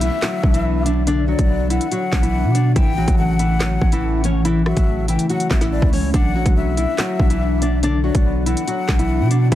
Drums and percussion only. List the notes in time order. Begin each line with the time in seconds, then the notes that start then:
0.01 closed hi-hat
0.22 snare, clap, closed hi-hat
0.43 kick
0.54 closed hi-hat
0.86 closed hi-hat
1.07 closed hi-hat
1.39 kick, closed hi-hat
1.70 closed hi-hat
1.81 closed hi-hat
1.92 closed hi-hat
2.13 kick, snare, clap
2.23 closed hi-hat
2.55 closed hi-hat
2.76 kick, closed hi-hat
3.08 kick, closed hi-hat
3.39 closed hi-hat
3.60 snare, clap, closed hi-hat
3.82 kick
3.92 closed hi-hat
4.24 closed hi-hat
4.45 closed hi-hat
4.66 cross-stick
4.77 kick, closed hi-hat
5.08 closed hi-hat
5.19 closed hi-hat
5.29 closed hi-hat
5.40 closed hi-hat
5.50 kick, snare, clap
5.61 snare, closed hi-hat
5.82 kick
5.93 open hi-hat
6.14 kick, closed hi-hat
6.46 kick, closed hi-hat
6.77 closed hi-hat
6.98 snare, clap, closed hi-hat
7.20 kick
7.30 closed hi-hat
7.62 closed hi-hat
7.83 closed hi-hat
8.15 kick, closed hi-hat
8.46 closed hi-hat
8.57 closed hi-hat
8.68 closed hi-hat
8.89 kick, snare, clap
8.99 closed hi-hat
9.31 closed hi-hat
9.52 kick, closed hi-hat